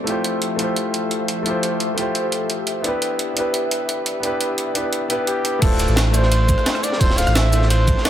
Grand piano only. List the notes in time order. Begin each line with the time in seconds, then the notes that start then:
0.04 A3 E4 F4
0.09 G4 C5
0.56 A3 E4 F4
0.61 G4 C5
1.43 A3 E4 F4
1.48 G4 C5
1.94 A3 E4 F4
1.99 G4 C5
2.81 B3 D4 E4
2.87 G4 B4
3.33 B3 D4 E4
3.38 G4 B4
4.20 B3 D4 E4
4.25 G4 B4
4.74 B3 D4 E4 G4 B4
5.08 B3 D4 E4 G4 B4
5.59 A3 D4 E4
5.64 F4 C5
6.11 A3 D4 E4
6.16 F4 C5
6.98 A3 D4 E4
7.03 F4 C5
7.50 A3 D4 E4
7.55 F4 C5